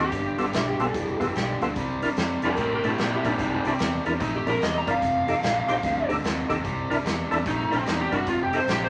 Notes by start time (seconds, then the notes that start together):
Already playing: F2 C3
0.00 G4
0.12 G1 G2 D3, kick, closed hi-hat
0.38 G1 G2 D3 B3 F4 A4, closed hi-hat
0.53 B1 G2 D3 E4, snare, closed hi-hat
0.67 G4
0.79 B1 G2 D3 B3 F4 A4, closed hi-hat
0.94 F1 G2 E3, kick, closed hi-hat
1.20 F1 G2 E3 B3 F4 G4 A4, kick, closed hi-hat
1.35 B1 G2 D3 G4, snare, closed hi-hat
1.61 D2 G2 D3 B3 F4 A4, closed hi-hat
1.76 C2 C3 G3, kick, closed hi-hat
2.02 C3 G3 D4 E4 A#4, closed hi-hat
2.16 F2 C3 G3, snare, closed hi-hat
2.42 F2 C3 G3 D4 E4 A#4, closed hi-hat
2.46 G4 A#4
2.57 A2 C3 A3, kick, closed hi-hat
2.61 G4 A#4
2.75 G4 A#4
2.83 A2 C3 A3 D4 E4 A4, closed hi-hat
2.88 E4 G4
2.98 A#2 C3 G3 E4 G4, snare, closed hi-hat
3.15 E4 G4
3.24 A#2 C3 G3 D4 E4 A#4, kick, closed hi-hat
3.28 C4 D#4
3.39 C2 C3 G3 C4 D#4, kick, closed hi-hat
3.54 C4 D#4
3.65 C2 C3 G3 C4 D4 E4 G4, closed hi-hat
3.79 E2 C3 G3, snare, closed hi-hat
4.05 E2 C3 G3 D4 E4 A#4, closed hi-hat
4.20 A#1 C3 A3 D#4, kick, closed hi-hat
4.36 G4
4.47 A#1 C3 A3 D4 E4 A#4, closed hi-hat
4.61 E2 C3 G3 D#5, snare, closed hi-hat
4.78 A#5
4.86 G2 C3 G3 D4 E4 A#4, kick, closed hi-hat
4.91 F5
5.01 F1 F2 C3, kick, closed hi-hat
5.27 F2 C3 D#4 G4 A4, closed hi-hat
5.42 A#1 F2 C3, snare, closed hi-hat
5.68 A#1 F2 C3 D#4 G4 C5, closed hi-hat
5.83 D2 F2 D3, kick, snare, closed hi-hat
6.09 D2 F2 D3 D#4 G4 A4, closed hi-hat
6.24 D#2 F2 C3, snare, closed hi-hat
6.49 D#2 F2 C3 D#4 G4 A4, kick, closed hi-hat
6.64 C2 C3 G3, kick, closed hi-hat
6.90 C2 C3 G3 D4 E4 A#4, closed hi-hat
7.04 E2 C3 G3, snare, closed hi-hat
7.31 E2 C3 G3 D4 E4 A4, closed hi-hat
7.46 A#1 C3 A3 D#4, kick, snare, closed hi-hat
7.71 A#1 C3 A3 D4 E4 A#4, closed hi-hat
7.76 C4
7.86 E2 C3 G3 D#4, snare, closed hi-hat
8.01 G4
8.12 G2 C3 G3 D4 E4 F#4 A#4, kick, closed hi-hat
8.26 F1 F2 C3 F4, kick, closed hi-hat
8.43 G4
8.53 F2 C3 D#4 G4 A4 C5, closed hi-hat
8.67 A#1 F2 C3 G4, snare, closed hi-hat
8.84 C5